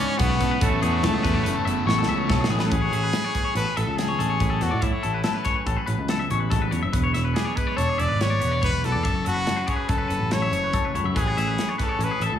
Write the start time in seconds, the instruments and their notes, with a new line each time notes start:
Already playing: clean electric guitar G#2 E3 B3 C#4 E4, overdriven electric guitar C#3 G#3, trumpet C#4
0.00 overdriven electric guitar C#4 E4 G#4
0.08 clean electric guitar C#5
0.18 picked electric bass B1, clean electric guitar C#3 B4, overdriven electric guitar C#3 G#3 C#4 E4 G#4, trumpet B3, kick, closed hi-hat
0.29 clean electric guitar C#5
0.39 clean electric guitar B2 A4, overdriven electric guitar C#4 E4 G#4, kick, closed hi-hat
0.51 clean electric guitar B4
0.59 picked electric bass A1, clean electric guitar A2 E3 B3 C#4 F#4 A4, overdriven electric guitar A3 C#4 E4, trumpet A3, kick, closed hi-hat
0.63 overdriven electric guitar A4
0.82 picked electric bass E2, clean electric guitar B3 G#4, overdriven electric guitar C#4 E4 A4, closed hi-hat
0.92 clean electric guitar F#4
1.02 picked electric bass C#2, clean electric guitar E3 A4, overdriven electric guitar A3 C#4 E4 A4, snare, closed hi-hat
1.14 clean electric guitar G#4
1.22 picked electric bass E2, overdriven electric guitar A3 C#4 E4 A4, clean electric guitar C#4 B4, kick, closed hi-hat
1.34 picked electric bass A1, clean electric guitar C#5
1.44 picked electric bass F#1, overdriven electric guitar A3 C#4 E4 A4, clean electric guitar B4, closed hi-hat
1.55 clean electric guitar A4
1.64 picked electric bass F#1, clean electric guitar E2 B3 E5, overdriven electric guitar C#4 E4 A4, closed hi-hat
1.85 picked electric bass A1, overdriven electric guitar A3 C#4 E4 A4, clean electric guitar C#5, snare
1.98 clean electric guitar A4
2.03 overdriven electric guitar A4, snare
2.07 picked electric bass C#2, clean electric guitar C#4 E5, overdriven electric guitar C#4 E4
2.18 clean electric guitar C#5
2.28 picked electric bass B1, clean electric guitar A2 C#4 A4, overdriven electric guitar A3 C#4 E4 A4, kick, snare
2.40 clean electric guitar G#4
2.44 snare
2.48 picked electric bass A1, clean electric guitar B3 G#4, overdriven electric guitar C#4 E4 A4
2.59 clean electric guitar B4, snare
2.65 trumpet A4
2.70 picked electric bass A1, clean electric guitar A2 E3 G#3 C#4 B4, trumpet G#4, kick, closed hi-hat
2.82 clean electric guitar C#5
2.91 picked electric bass A1, clean electric guitar C#4 E5, closed hi-hat
3.03 clean electric guitar B4
3.13 clean electric guitar C#4, snare, closed hi-hat
3.24 clean electric guitar C#5
3.33 clean electric guitar E3 B3 B4, kick, closed hi-hat
3.44 clean electric guitar C#4 C#5
3.55 picked electric bass A1, clean electric guitar B3 A4, trumpet B4, closed hi-hat
3.66 clean electric guitar C#4 G#4
3.77 picked electric bass A1, trumpet A4, clean electric guitar E5, closed hi-hat
3.87 picked electric bass C#2, clean electric guitar A4
3.97 clean electric guitar E2, trumpet G#4, snare, closed hi-hat
4.08 clean electric guitar C#5
4.19 picked electric bass A1, clean electric guitar G#3 A4, closed hi-hat
4.30 clean electric guitar C#5
4.40 picked electric bass A1, clean electric guitar A2 B4, kick, closed hi-hat
4.50 clean electric guitar A4
4.61 picked electric bass E2, clean electric guitar C#4, trumpet F#4, snare, closed hi-hat
4.71 picked electric bass A2, clean electric guitar D5
4.81 clean electric guitar A2 E5, trumpet E4, kick, closed hi-hat
4.92 clean electric guitar C#5
5.03 picked electric bass A1, clean electric guitar C#4 A4, closed hi-hat
5.14 clean electric guitar B4
5.24 clean electric guitar B3 A4, snare, closed hi-hat
5.34 clean electric guitar C#4 B4
5.45 clean electric guitar E3 G#4 C#5, kick, snare, closed hi-hat
5.55 clean electric guitar B4
5.66 picked electric bass A1, clean electric guitar C#4 A4, kick, closed hi-hat
5.76 clean electric guitar B4
5.86 picked electric bass A1, clean electric guitar B4, closed hi-hat
5.98 picked electric bass C#2
6.08 clean electric guitar E2 A4, snare, closed hi-hat
6.19 clean electric guitar E5
6.30 picked electric bass A1, clean electric guitar G#3 C#5, closed hi-hat
6.40 clean electric guitar B4
6.50 picked electric bass A1, clean electric guitar G#2 A4, kick, snare, closed hi-hat
6.62 clean electric guitar B4
6.71 picked electric bass E2, clean electric guitar F#2 C#5, closed hi-hat
6.83 picked electric bass F#1, clean electric guitar E5
6.92 picked electric bass E1, clean electric guitar E2 B4, kick, closed hi-hat
7.03 clean electric guitar C#5
7.12 picked electric bass E1, clean electric guitar E4 E5, snare, closed hi-hat
7.25 clean electric guitar B4
7.34 clean electric guitar D4, trumpet G#4, snare, closed hi-hat
7.45 clean electric guitar C#5
7.55 clean electric guitar G#3 E4 B4, trumpet B4, kick, closed hi-hat
7.67 clean electric guitar C#5
7.76 picked electric bass E1, clean electric guitar D4 A4, trumpet C#5, closed hi-hat
7.89 clean electric guitar G#4
7.98 picked electric bass E1, trumpet D5, clean electric guitar E5, closed hi-hat
8.08 picked electric bass G#1, clean electric guitar B4
8.19 clean electric guitar E2, trumpet C#5, snare, closed hi-hat
8.30 clean electric guitar D5
8.39 picked electric bass E1, clean electric guitar B3 B4, closed hi-hat
8.51 clean electric guitar D5
8.62 picked electric bass E1, trumpet B4, clean electric guitar C#5, kick, closed hi-hat
8.71 clean electric guitar B4
8.81 picked electric bass B1, clean electric guitar E2, trumpet A4, snare, closed hi-hat
8.92 picked electric bass E2, clean electric guitar D5
9.03 picked electric bass F#1, clean electric guitar F#2 E5, kick, closed hi-hat
9.15 clean electric guitar C#5
9.25 picked electric bass F#1, clean electric guitar E4 A4, trumpet F#4, closed hi-hat
9.34 clean electric guitar B4
9.46 clean electric guitar C#4 A4, snare, closed hi-hat
9.56 clean electric guitar B4
9.67 clean electric guitar F#3 E4 C#5, trumpet G#4, kick, closed hi-hat
9.76 clean electric guitar B4
9.88 picked electric bass F#1, clean electric guitar C#4 A4, trumpet A4, kick, closed hi-hat
9.98 clean electric guitar B4
10.08 picked electric bass F#1, clean electric guitar B4, closed hi-hat
10.19 picked electric bass A1
10.30 clean electric guitar C#3 A4, trumpet C#5, snare, closed hi-hat
10.42 clean electric guitar E5
10.51 picked electric bass F#1, clean electric guitar A3 C#5, closed hi-hat
10.63 clean electric guitar B4
10.71 picked electric bass F#1, clean electric guitar F#2 A4, kick, closed hi-hat
10.85 clean electric guitar B4
10.94 picked electric bass C#2, clean electric guitar E4 C#5, closed hi-hat
11.04 picked electric bass F#2, clean electric guitar E5
11.13 picked electric bass A1, clean electric guitar A2 E3 G#3 C#4 B4, trumpet G#4, kick, closed hi-hat
11.27 clean electric guitar C#5
11.36 picked electric bass A1, clean electric guitar C#4 E5, snare, closed hi-hat
11.48 clean electric guitar B4
11.57 clean electric guitar C#4, snare, closed hi-hat
11.69 clean electric guitar C#5
11.78 clean electric guitar E3 G#4 B4, trumpet A4, kick, snare, closed hi-hat
11.89 clean electric guitar C#5
11.99 picked electric bass A1, clean electric guitar C#4 A4, closed hi-hat
12.04 trumpet B4
12.11 clean electric guitar G#4
12.20 picked electric bass A1, clean electric guitar E5, closed hi-hat
12.25 trumpet A4
12.32 picked electric bass C#2, clean electric guitar A4